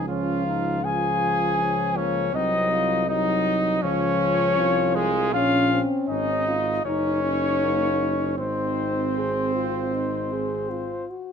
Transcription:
0.00 2.30 C#2 soft
0.08 0.83 F3 soft
0.08 0.45 C#4 soft
0.08 0.82 F4 medium
0.08 0.86 F5 medium
0.46 0.83 D#4 soft
0.84 2.31 F3 soft
0.84 1.61 F4 soft
0.84 1.98 G#4 medium
0.84 1.98 G#5 medium
1.59 1.98 C#4 soft
1.97 2.36 A#3 soft
1.97 2.37 C#4 medium
1.97 2.34 C#5 medium
2.34 3.80 C2 soft
2.34 3.07 F#3 soft
2.34 2.71 C4 soft
2.34 3.08 D#4 medium
2.34 3.08 D#5 medium
2.72 3.10 F4 medium
3.09 3.85 F#3 medium
3.09 3.83 D#4 medium
3.09 3.84 D#4 medium
3.09 3.82 D#5 medium
3.82 4.59 C#2 medium
3.82 5.17 F3 medium
3.82 4.94 C#4 medium
3.82 4.55 F4 medium
3.82 4.97 C#5 medium
4.57 5.35 C2 soft
4.57 5.35 F4 medium
4.94 5.35 G#3 medium
4.94 5.34 G#4 medium
5.33 5.83 A#1 medium
5.33 5.71 C#4 medium
5.33 6.55 C#4 medium
5.33 5.83 F4 medium
5.33 5.82 F5 medium
5.71 6.11 C4 medium
6.09 6.81 G#1 soft
6.09 6.47 C#4 medium
6.09 6.80 D#4 medium
6.09 6.81 D#5 medium
6.47 6.84 F4 medium
6.84 8.40 F#1 soft
6.84 8.35 C#4 medium
6.84 7.22 D#4 medium
6.84 8.34 D#4 medium
6.84 8.35 C#5 medium
7.23 7.60 C#4 soft
7.61 8.10 A#3 soft
8.37 11.15 G#1 soft
8.37 11.05 C4 medium
8.37 11.05 C4 soft
8.37 9.06 D#4 soft
8.37 11.05 C5 medium
9.16 9.52 G#4 soft
9.55 9.95 F4 soft
9.94 10.34 D#4 soft
10.32 10.72 G#4 soft
10.71 11.12 F4 soft
11.10 11.32 F#4 soft

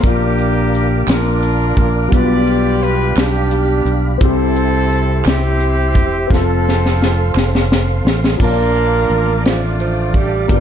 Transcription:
0.00 1.04 A#1 medium
0.00 1.04 A#2 medium
0.00 2.06 A#3 medium
0.00 2.08 D4 soft
0.00 4.16 F5 medium
0.00 kick loud
0.00 closed hi-hat medium
0.04 1.05 A#3 medium
0.04 1.05 D4 medium
0.04 2.10 F4 medium
0.04 1.08 G4 medium
0.04 2.11 A#4 medium
0.04 4.18 D5 medium
0.04 2.11 D6 medium
0.38 closed hi-hat soft
0.75 closed hi-hat soft
1.07 1.73 A#1 medium
1.07 2.10 D4 medium
1.07 2.10 F4 medium
1.07 2.13 A#4 medium
1.07 snare medium
1.07 clap medium
1.07 closed hi-hat medium
1.42 closed hi-hat soft
1.77 2.09 A#1 medium
1.77 kick medium
1.77 closed hi-hat soft
2.08 3.13 B1 medium
2.08 4.15 G3 medium
2.08 4.16 B3 soft
2.08 4.17 D4 soft
2.08 6.26 G4 medium
2.08 4.19 B5 medium
2.12 3.13 B2 medium
2.12 4.18 F4 soft
2.12 3.14 F4 medium
2.12 3.14 G4 medium
2.12 4.19 B4 medium
2.12 2.82 D5 loud
2.12 kick loud
2.12 closed hi-hat medium
2.47 closed hi-hat soft
2.82 3.17 B4 medium
2.82 closed hi-hat soft
3.16 3.82 B1 medium
3.16 4.18 D4 medium
3.16 3.95 G4 medium
3.16 snare medium
3.16 clap medium
3.16 closed hi-hat medium
3.51 closed hi-hat soft
3.85 4.18 B1 medium
3.85 closed hi-hat soft
4.18 5.22 C2 medium
4.18 5.22 C3 medium
4.18 6.25 C4 medium
4.18 6.26 E4 medium
4.18 8.36 C5 medium
4.18 6.28 E5 medium
4.18 8.35 C6 medium
4.18 kick loud
4.18 closed hi-hat medium
4.22 5.23 C4 medium
4.22 5.23 E4 medium
4.22 6.28 G4 medium
4.22 5.22 A4 loud
4.56 closed hi-hat soft
4.92 closed hi-hat soft
5.24 5.95 C2 medium
5.24 6.27 C4 medium
5.24 6.27 E4 medium
5.24 6.30 G4 medium
5.24 snare medium
5.24 clap medium
5.24 closed hi-hat medium
5.60 closed hi-hat medium
5.95 6.27 E1 medium
5.95 kick medium
5.95 closed hi-hat soft
6.27 7.31 F1 medium
6.27 8.34 C4 medium
6.27 8.36 F4 soft
6.27 8.37 A4 medium
6.27 8.38 F5 medium
6.27 kick loud
6.31 7.67 C4 medium
6.31 7.67 F4 medium
6.31 7.70 A4 medium
6.31 8.37 A4 medium
6.31 snare soft
6.68 snare medium
6.86 snare soft
7.02 snare medium
7.35 8.01 F1 medium
7.35 snare medium
7.35 clap medium
7.55 snare medium
7.72 snare medium
8.05 8.37 A1 medium
8.05 snare medium
8.24 snare medium
8.37 9.06 A#1 medium
8.37 10.44 F3 medium
8.37 10.45 D4 soft
8.37 10.48 D5 medium
8.37 10.60 F5 soft
8.37 10.47 A5 soft
8.37 10.60 D6 medium
8.37 kick medium
8.37 crash medium
8.41 9.41 A#3 soft
8.41 9.42 A#3 loud
8.41 9.42 D4 medium
8.41 10.46 F4 soft
8.41 9.42 F4 medium
8.41 9.41 A#4 medium
8.41 8.48 C#5 soft
8.41 10.46 A5 soft
8.51 10.51 D5 medium
8.75 closed hi-hat soft
9.10 10.45 A1 medium
9.10 closed hi-hat soft
9.45 9.61 F3 medium
9.45 10.46 A3 medium
9.45 10.47 D4 medium
9.45 10.15 F4 medium
9.45 snare medium
9.45 closed hi-hat medium
9.80 10.16 F3 medium
9.80 closed hi-hat soft
10.14 10.50 G3 medium
10.14 10.50 G4 medium
10.14 kick medium
10.14 closed hi-hat soft
10.47 10.60 G1 medium
10.47 10.60 G2 soft
10.47 10.60 G3 medium
10.47 10.54 A#3 soft
10.47 10.60 D4 soft
10.47 10.60 F4 soft
10.47 10.60 B4 medium
10.47 10.60 G5 soft
10.47 kick loud
10.47 closed hi-hat medium
10.52 10.60 B3 soft
10.52 10.60 B3 medium
10.52 10.60 D4 medium
10.52 10.60 G4 soft
10.52 10.60 G4 medium
10.52 10.60 D5 medium

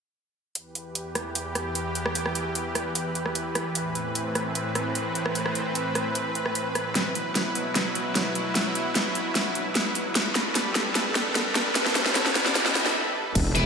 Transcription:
0.55 3.72 E2 medium
0.55 6.91 E3 medium
0.55 3.72 G4 medium
0.55 10.11 B4 medium
0.55 closed hi-hat medium
0.75 closed hi-hat medium
0.95 closed hi-hat medium
1.15 cross-stick medium
1.15 closed hi-hat medium
1.35 closed hi-hat medium
1.55 cross-stick medium
1.55 closed hi-hat medium
1.75 closed hi-hat medium
1.95 closed hi-hat medium
2.06 cross-stick medium
2.15 closed hi-hat medium
2.26 cross-stick medium
2.35 closed hi-hat medium
2.55 closed hi-hat medium
2.75 cross-stick medium
2.75 closed hi-hat medium
2.95 closed hi-hat medium
3.15 closed hi-hat medium
3.26 cross-stick soft
3.35 closed hi-hat medium
3.55 cross-stick medium
3.55 closed hi-hat medium
3.75 6.92 A2 medium
3.75 6.92 C4 medium
3.75 closed hi-hat medium
3.95 closed hi-hat soft
4.15 closed hi-hat medium
4.35 cross-stick medium
4.35 closed hi-hat medium
4.55 closed hi-hat medium
4.75 cross-stick medium
4.75 closed hi-hat medium
4.95 closed hi-hat medium
5.15 closed hi-hat medium
5.26 cross-stick medium
5.35 closed hi-hat medium
5.46 cross-stick medium
5.55 closed hi-hat soft
5.75 closed hi-hat medium
5.95 cross-stick medium
5.95 closed hi-hat soft
6.15 closed hi-hat medium
6.35 closed hi-hat soft
6.46 cross-stick medium
6.55 closed hi-hat medium
6.75 cross-stick medium
6.75 closed hi-hat soft
6.95 10.12 B2 medium
6.95 10.12 F#3 medium
6.95 10.12 E4 medium
6.95 snare medium
6.95 closed hi-hat medium
6.95 riser medium
7.15 closed hi-hat medium
7.35 snare soft
7.35 closed hi-hat medium
7.55 closed hi-hat medium
7.75 snare medium
7.75 closed hi-hat medium
7.95 closed hi-hat medium
8.15 snare medium
8.15 closed hi-hat medium
8.35 closed hi-hat soft
8.55 snare medium
8.55 closed hi-hat medium
8.75 closed hi-hat medium
8.95 snare medium
8.95 closed hi-hat medium
9.15 closed hi-hat medium
9.35 snare medium
9.35 closed hi-hat medium
9.55 closed hi-hat soft
9.75 snare medium
9.75 closed hi-hat medium
9.95 closed hi-hat medium
10.15 13.32 G2 medium
10.15 13.32 G3 medium
10.15 13.32 A4 medium
10.15 13.32 B4 medium
10.15 snare medium
10.15 closed hi-hat medium
10.35 snare medium
10.35 closed hi-hat medium
10.55 snare medium
10.55 closed hi-hat medium
10.75 snare medium
10.75 closed hi-hat medium
10.95 snare medium
10.95 closed hi-hat medium
11.15 snare medium
11.15 closed hi-hat medium
11.35 snare medium
11.35 closed hi-hat medium
11.55 snare medium
11.55 closed hi-hat medium
11.75 snare medium
11.75 closed hi-hat medium
11.86 snare medium
11.95 snare medium
11.95 closed hi-hat medium
12.06 snare medium
12.15 snare loud
12.15 closed hi-hat medium
12.26 snare medium
12.35 snare loud
12.35 closed hi-hat medium
12.46 snare medium
12.55 snare loud
12.55 closed hi-hat medium
12.66 snare medium
12.75 snare loud
12.75 closed hi-hat medium
12.86 snare medium
13.35 13.66 E1 medium
13.35 13.66 E3 medium
13.35 13.66 E4 medium
13.35 13.66 G4 medium
13.35 13.66 B4 medium
13.35 kick loud
13.35 closed hi-hat medium
13.35 crash loud
13.35 sub drop medium
13.55 13.63 E4 medium
13.55 13.63 B4 medium
13.55 13.63 E5 loud
13.55 closed hi-hat medium

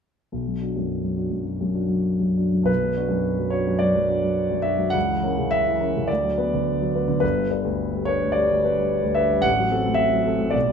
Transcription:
0.32 1.42 B1 soft
0.47 0.70 F#3 soft
0.61 0.74 D4 soft
0.61 0.75 F#4 soft
0.76 1.21 F#2 soft
1.04 1.26 F#3 soft
1.17 1.30 D4 soft
1.17 1.30 F#4 soft
1.30 1.54 F#2 soft
1.44 1.69 F#3 soft
1.61 1.85 F#2 soft
1.74 1.89 D4 soft
1.74 1.89 F#4 soft
1.88 2.40 F#3 soft
2.20 2.47 F#2 soft
2.37 2.52 D4 soft
2.37 2.52 F#4 soft
2.53 2.69 F#3 soft
2.63 3.76 B1 soft
2.63 3.53 B4 medium
2.83 3.06 F#3 soft
2.96 3.10 D4 soft
2.96 3.10 F#4 soft
3.09 3.56 F#2 soft
3.39 3.62 F#3 soft
3.50 3.66 D4 soft
3.50 3.66 F#4 soft
3.50 3.80 C#5 medium
3.67 3.90 F#2 soft
3.79 4.04 F#3 soft
3.79 4.64 D5 medium
3.95 4.18 F#2 soft
4.09 4.22 D4 soft
4.09 4.22 F#4 soft
4.23 4.69 F#3 soft
4.51 4.74 F#2 soft
4.62 4.78 D4 soft
4.62 4.78 F#4 soft
4.62 4.93 E5 medium
4.78 4.94 F#3 soft
4.90 6.05 C#2 soft
4.90 5.50 F#5 medium
5.07 5.31 E3 soft
5.23 5.36 C#4 soft
5.23 5.36 A#4 soft
5.38 5.84 C#3 soft
5.51 6.08 E5 medium
5.68 5.90 E3 soft
5.80 5.93 C#4 soft
5.80 5.93 A#4 soft
5.97 6.10 C#3 soft
6.08 7.19 D2 soft
6.08 6.93 D5 medium
6.24 6.46 F#3 soft
6.38 6.50 B3 soft
6.38 6.50 B4 soft
6.54 6.97 D3 soft
6.81 7.03 F#3 soft
6.95 7.07 B3 soft
6.95 7.08 B4 soft
7.08 7.22 D3 soft
7.20 8.32 G1 soft
7.20 7.50 B4 medium
7.37 7.60 G3 soft
7.51 7.64 D4 soft
7.51 7.64 B4 soft
7.65 8.10 D2 soft
7.93 8.15 G3 soft
8.05 8.20 D4 soft
8.05 8.20 B4 soft
8.05 8.34 C#5 medium
8.23 8.44 D2 soft
8.32 8.57 G3 soft
8.32 9.15 D5 medium
8.50 8.71 D2 soft
8.64 8.76 D4 soft
8.64 8.76 B4 soft
8.77 9.20 G3 soft
9.03 9.25 D2 soft
9.15 9.29 D4 soft
9.15 9.29 B4 soft
9.15 9.43 E5 medium
9.31 9.45 G3 soft
9.41 10.49 A1 soft
9.41 9.98 F#5 medium
9.58 9.80 F#3 soft
9.71 9.84 C4 soft
9.71 9.84 A4 soft
9.85 10.30 A2 soft
9.94 10.52 E5 medium
10.13 10.35 F#3 soft
10.26 10.39 C4 soft
10.26 10.39 A4 soft
10.39 10.53 A2 soft
10.50 10.72 B1 soft
10.50 10.72 D5 medium
10.66 10.72 G3 soft

